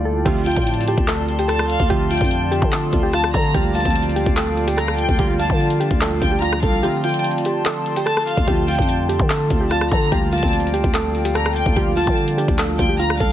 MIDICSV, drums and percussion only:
0, 0, Header, 1, 2, 480
1, 0, Start_track
1, 0, Key_signature, -1, "minor"
1, 0, Tempo, 410959
1, 300, Time_signature, 4, 2, 24, 8
1, 15564, End_track
2, 0, Start_track
2, 0, Title_t, "Drums"
2, 300, Note_on_c, 9, 36, 111
2, 300, Note_on_c, 9, 42, 65
2, 300, Note_on_c, 9, 49, 101
2, 417, Note_off_c, 9, 36, 0
2, 417, Note_off_c, 9, 42, 0
2, 417, Note_off_c, 9, 49, 0
2, 540, Note_on_c, 9, 42, 62
2, 601, Note_off_c, 9, 42, 0
2, 601, Note_on_c, 9, 42, 62
2, 660, Note_off_c, 9, 42, 0
2, 660, Note_on_c, 9, 36, 97
2, 660, Note_on_c, 9, 42, 66
2, 721, Note_off_c, 9, 42, 0
2, 721, Note_on_c, 9, 42, 63
2, 777, Note_off_c, 9, 36, 0
2, 780, Note_off_c, 9, 42, 0
2, 780, Note_on_c, 9, 42, 85
2, 860, Note_off_c, 9, 42, 0
2, 860, Note_on_c, 9, 42, 69
2, 941, Note_off_c, 9, 42, 0
2, 941, Note_on_c, 9, 42, 53
2, 1022, Note_off_c, 9, 42, 0
2, 1022, Note_on_c, 9, 42, 83
2, 1139, Note_off_c, 9, 42, 0
2, 1140, Note_on_c, 9, 36, 107
2, 1256, Note_off_c, 9, 36, 0
2, 1259, Note_on_c, 9, 42, 81
2, 1260, Note_on_c, 9, 39, 127
2, 1376, Note_off_c, 9, 42, 0
2, 1377, Note_off_c, 9, 39, 0
2, 1500, Note_on_c, 9, 42, 43
2, 1617, Note_off_c, 9, 42, 0
2, 1620, Note_on_c, 9, 42, 76
2, 1737, Note_off_c, 9, 42, 0
2, 1740, Note_on_c, 9, 37, 65
2, 1740, Note_on_c, 9, 42, 75
2, 1857, Note_off_c, 9, 37, 0
2, 1857, Note_off_c, 9, 42, 0
2, 1861, Note_on_c, 9, 37, 97
2, 1978, Note_off_c, 9, 37, 0
2, 1981, Note_on_c, 9, 42, 82
2, 2097, Note_off_c, 9, 42, 0
2, 2100, Note_on_c, 9, 36, 91
2, 2216, Note_off_c, 9, 36, 0
2, 2220, Note_on_c, 9, 36, 108
2, 2220, Note_on_c, 9, 42, 63
2, 2337, Note_off_c, 9, 36, 0
2, 2337, Note_off_c, 9, 42, 0
2, 2461, Note_on_c, 9, 42, 60
2, 2462, Note_on_c, 9, 46, 77
2, 2541, Note_off_c, 9, 42, 0
2, 2541, Note_on_c, 9, 42, 63
2, 2578, Note_off_c, 9, 46, 0
2, 2580, Note_on_c, 9, 36, 96
2, 2621, Note_off_c, 9, 42, 0
2, 2621, Note_on_c, 9, 42, 64
2, 2697, Note_off_c, 9, 36, 0
2, 2699, Note_off_c, 9, 42, 0
2, 2699, Note_on_c, 9, 42, 83
2, 2815, Note_off_c, 9, 42, 0
2, 2942, Note_on_c, 9, 42, 83
2, 3059, Note_off_c, 9, 42, 0
2, 3060, Note_on_c, 9, 36, 110
2, 3176, Note_off_c, 9, 36, 0
2, 3179, Note_on_c, 9, 42, 84
2, 3180, Note_on_c, 9, 39, 127
2, 3296, Note_off_c, 9, 42, 0
2, 3297, Note_off_c, 9, 39, 0
2, 3420, Note_on_c, 9, 36, 100
2, 3420, Note_on_c, 9, 42, 76
2, 3537, Note_off_c, 9, 36, 0
2, 3537, Note_off_c, 9, 42, 0
2, 3661, Note_on_c, 9, 37, 66
2, 3661, Note_on_c, 9, 42, 76
2, 3778, Note_off_c, 9, 37, 0
2, 3778, Note_off_c, 9, 42, 0
2, 3782, Note_on_c, 9, 37, 97
2, 3898, Note_off_c, 9, 37, 0
2, 3901, Note_on_c, 9, 36, 107
2, 3901, Note_on_c, 9, 42, 76
2, 4018, Note_off_c, 9, 36, 0
2, 4018, Note_off_c, 9, 42, 0
2, 4140, Note_on_c, 9, 42, 65
2, 4141, Note_on_c, 9, 36, 110
2, 4257, Note_off_c, 9, 36, 0
2, 4257, Note_off_c, 9, 42, 0
2, 4381, Note_on_c, 9, 42, 63
2, 4441, Note_off_c, 9, 42, 0
2, 4441, Note_on_c, 9, 42, 63
2, 4500, Note_on_c, 9, 36, 94
2, 4501, Note_off_c, 9, 42, 0
2, 4501, Note_on_c, 9, 42, 64
2, 4560, Note_off_c, 9, 42, 0
2, 4560, Note_on_c, 9, 42, 64
2, 4617, Note_off_c, 9, 36, 0
2, 4621, Note_off_c, 9, 42, 0
2, 4621, Note_on_c, 9, 42, 86
2, 4700, Note_off_c, 9, 42, 0
2, 4700, Note_on_c, 9, 42, 68
2, 4781, Note_off_c, 9, 42, 0
2, 4781, Note_on_c, 9, 42, 53
2, 4862, Note_off_c, 9, 42, 0
2, 4862, Note_on_c, 9, 42, 82
2, 4979, Note_off_c, 9, 42, 0
2, 4980, Note_on_c, 9, 36, 105
2, 5097, Note_off_c, 9, 36, 0
2, 5100, Note_on_c, 9, 42, 82
2, 5101, Note_on_c, 9, 39, 126
2, 5217, Note_off_c, 9, 42, 0
2, 5218, Note_off_c, 9, 39, 0
2, 5341, Note_on_c, 9, 42, 44
2, 5458, Note_off_c, 9, 42, 0
2, 5461, Note_on_c, 9, 42, 73
2, 5578, Note_off_c, 9, 42, 0
2, 5581, Note_on_c, 9, 42, 76
2, 5582, Note_on_c, 9, 37, 65
2, 5698, Note_off_c, 9, 37, 0
2, 5698, Note_off_c, 9, 42, 0
2, 5702, Note_on_c, 9, 37, 97
2, 5819, Note_off_c, 9, 37, 0
2, 5822, Note_on_c, 9, 42, 83
2, 5939, Note_off_c, 9, 42, 0
2, 5940, Note_on_c, 9, 36, 89
2, 6057, Note_off_c, 9, 36, 0
2, 6061, Note_on_c, 9, 36, 111
2, 6061, Note_on_c, 9, 42, 64
2, 6178, Note_off_c, 9, 36, 0
2, 6178, Note_off_c, 9, 42, 0
2, 6303, Note_on_c, 9, 46, 80
2, 6419, Note_off_c, 9, 46, 0
2, 6421, Note_on_c, 9, 36, 94
2, 6538, Note_off_c, 9, 36, 0
2, 6541, Note_on_c, 9, 42, 51
2, 6658, Note_off_c, 9, 42, 0
2, 6661, Note_on_c, 9, 42, 90
2, 6778, Note_off_c, 9, 42, 0
2, 6783, Note_on_c, 9, 42, 84
2, 6900, Note_off_c, 9, 42, 0
2, 6900, Note_on_c, 9, 36, 107
2, 7017, Note_off_c, 9, 36, 0
2, 7020, Note_on_c, 9, 42, 80
2, 7022, Note_on_c, 9, 39, 127
2, 7137, Note_off_c, 9, 42, 0
2, 7138, Note_off_c, 9, 39, 0
2, 7261, Note_on_c, 9, 36, 99
2, 7261, Note_on_c, 9, 42, 77
2, 7377, Note_off_c, 9, 42, 0
2, 7378, Note_off_c, 9, 36, 0
2, 7500, Note_on_c, 9, 42, 75
2, 7617, Note_off_c, 9, 42, 0
2, 7622, Note_on_c, 9, 37, 96
2, 7739, Note_off_c, 9, 37, 0
2, 7740, Note_on_c, 9, 42, 77
2, 7741, Note_on_c, 9, 36, 105
2, 7857, Note_off_c, 9, 42, 0
2, 7858, Note_off_c, 9, 36, 0
2, 7861, Note_on_c, 9, 42, 42
2, 7978, Note_off_c, 9, 42, 0
2, 7980, Note_on_c, 9, 42, 65
2, 8097, Note_off_c, 9, 42, 0
2, 8221, Note_on_c, 9, 42, 60
2, 8280, Note_off_c, 9, 42, 0
2, 8280, Note_on_c, 9, 42, 62
2, 8340, Note_off_c, 9, 42, 0
2, 8340, Note_on_c, 9, 42, 63
2, 8400, Note_off_c, 9, 42, 0
2, 8400, Note_on_c, 9, 42, 63
2, 8461, Note_off_c, 9, 42, 0
2, 8461, Note_on_c, 9, 42, 86
2, 8541, Note_off_c, 9, 42, 0
2, 8541, Note_on_c, 9, 42, 67
2, 8621, Note_off_c, 9, 42, 0
2, 8621, Note_on_c, 9, 42, 50
2, 8702, Note_off_c, 9, 42, 0
2, 8702, Note_on_c, 9, 42, 83
2, 8819, Note_off_c, 9, 42, 0
2, 8939, Note_on_c, 9, 42, 84
2, 8940, Note_on_c, 9, 39, 127
2, 9056, Note_off_c, 9, 42, 0
2, 9057, Note_off_c, 9, 39, 0
2, 9181, Note_on_c, 9, 42, 43
2, 9297, Note_off_c, 9, 42, 0
2, 9300, Note_on_c, 9, 42, 75
2, 9417, Note_off_c, 9, 42, 0
2, 9421, Note_on_c, 9, 37, 65
2, 9421, Note_on_c, 9, 42, 78
2, 9538, Note_off_c, 9, 37, 0
2, 9538, Note_off_c, 9, 42, 0
2, 9542, Note_on_c, 9, 37, 95
2, 9659, Note_off_c, 9, 37, 0
2, 9662, Note_on_c, 9, 42, 84
2, 9778, Note_off_c, 9, 42, 0
2, 9780, Note_on_c, 9, 36, 89
2, 9897, Note_off_c, 9, 36, 0
2, 9901, Note_on_c, 9, 36, 116
2, 9901, Note_on_c, 9, 42, 65
2, 10017, Note_off_c, 9, 42, 0
2, 10018, Note_off_c, 9, 36, 0
2, 10140, Note_on_c, 9, 42, 63
2, 10141, Note_on_c, 9, 46, 80
2, 10221, Note_off_c, 9, 42, 0
2, 10221, Note_on_c, 9, 42, 63
2, 10258, Note_off_c, 9, 46, 0
2, 10261, Note_on_c, 9, 36, 98
2, 10301, Note_off_c, 9, 42, 0
2, 10301, Note_on_c, 9, 42, 65
2, 10377, Note_off_c, 9, 36, 0
2, 10379, Note_off_c, 9, 42, 0
2, 10379, Note_on_c, 9, 42, 86
2, 10496, Note_off_c, 9, 42, 0
2, 10622, Note_on_c, 9, 42, 80
2, 10739, Note_off_c, 9, 42, 0
2, 10740, Note_on_c, 9, 36, 107
2, 10857, Note_off_c, 9, 36, 0
2, 10860, Note_on_c, 9, 42, 84
2, 10861, Note_on_c, 9, 39, 126
2, 10976, Note_off_c, 9, 42, 0
2, 10977, Note_off_c, 9, 39, 0
2, 11100, Note_on_c, 9, 36, 101
2, 11100, Note_on_c, 9, 42, 77
2, 11217, Note_off_c, 9, 36, 0
2, 11217, Note_off_c, 9, 42, 0
2, 11340, Note_on_c, 9, 37, 66
2, 11340, Note_on_c, 9, 42, 78
2, 11456, Note_off_c, 9, 42, 0
2, 11457, Note_off_c, 9, 37, 0
2, 11461, Note_on_c, 9, 37, 99
2, 11578, Note_off_c, 9, 37, 0
2, 11580, Note_on_c, 9, 42, 74
2, 11581, Note_on_c, 9, 36, 101
2, 11697, Note_off_c, 9, 42, 0
2, 11698, Note_off_c, 9, 36, 0
2, 11820, Note_on_c, 9, 36, 114
2, 11820, Note_on_c, 9, 42, 64
2, 11937, Note_off_c, 9, 36, 0
2, 11937, Note_off_c, 9, 42, 0
2, 12060, Note_on_c, 9, 42, 62
2, 12120, Note_off_c, 9, 42, 0
2, 12120, Note_on_c, 9, 42, 62
2, 12180, Note_off_c, 9, 42, 0
2, 12180, Note_on_c, 9, 36, 98
2, 12180, Note_on_c, 9, 42, 61
2, 12240, Note_off_c, 9, 42, 0
2, 12240, Note_on_c, 9, 42, 61
2, 12297, Note_off_c, 9, 36, 0
2, 12300, Note_off_c, 9, 42, 0
2, 12300, Note_on_c, 9, 42, 88
2, 12380, Note_off_c, 9, 42, 0
2, 12380, Note_on_c, 9, 42, 65
2, 12460, Note_off_c, 9, 42, 0
2, 12460, Note_on_c, 9, 42, 53
2, 12542, Note_off_c, 9, 42, 0
2, 12542, Note_on_c, 9, 42, 84
2, 12659, Note_off_c, 9, 42, 0
2, 12660, Note_on_c, 9, 36, 108
2, 12777, Note_off_c, 9, 36, 0
2, 12780, Note_on_c, 9, 42, 83
2, 12781, Note_on_c, 9, 39, 125
2, 12897, Note_off_c, 9, 42, 0
2, 12898, Note_off_c, 9, 39, 0
2, 13021, Note_on_c, 9, 42, 45
2, 13137, Note_off_c, 9, 42, 0
2, 13141, Note_on_c, 9, 42, 74
2, 13257, Note_off_c, 9, 42, 0
2, 13260, Note_on_c, 9, 42, 78
2, 13261, Note_on_c, 9, 37, 67
2, 13377, Note_off_c, 9, 37, 0
2, 13377, Note_off_c, 9, 42, 0
2, 13382, Note_on_c, 9, 37, 98
2, 13499, Note_off_c, 9, 37, 0
2, 13502, Note_on_c, 9, 42, 82
2, 13618, Note_off_c, 9, 42, 0
2, 13620, Note_on_c, 9, 36, 92
2, 13737, Note_off_c, 9, 36, 0
2, 13740, Note_on_c, 9, 42, 63
2, 13741, Note_on_c, 9, 36, 110
2, 13857, Note_off_c, 9, 36, 0
2, 13857, Note_off_c, 9, 42, 0
2, 13981, Note_on_c, 9, 46, 80
2, 14098, Note_off_c, 9, 46, 0
2, 14100, Note_on_c, 9, 36, 96
2, 14217, Note_off_c, 9, 36, 0
2, 14221, Note_on_c, 9, 42, 51
2, 14338, Note_off_c, 9, 42, 0
2, 14341, Note_on_c, 9, 42, 90
2, 14457, Note_off_c, 9, 42, 0
2, 14463, Note_on_c, 9, 42, 83
2, 14579, Note_off_c, 9, 42, 0
2, 14580, Note_on_c, 9, 36, 103
2, 14696, Note_off_c, 9, 36, 0
2, 14699, Note_on_c, 9, 42, 81
2, 14701, Note_on_c, 9, 39, 127
2, 14816, Note_off_c, 9, 42, 0
2, 14817, Note_off_c, 9, 39, 0
2, 14940, Note_on_c, 9, 36, 100
2, 14940, Note_on_c, 9, 42, 75
2, 15057, Note_off_c, 9, 36, 0
2, 15057, Note_off_c, 9, 42, 0
2, 15180, Note_on_c, 9, 42, 77
2, 15297, Note_off_c, 9, 42, 0
2, 15302, Note_on_c, 9, 37, 102
2, 15419, Note_off_c, 9, 37, 0
2, 15421, Note_on_c, 9, 36, 103
2, 15421, Note_on_c, 9, 42, 77
2, 15537, Note_off_c, 9, 42, 0
2, 15538, Note_off_c, 9, 36, 0
2, 15564, End_track
0, 0, End_of_file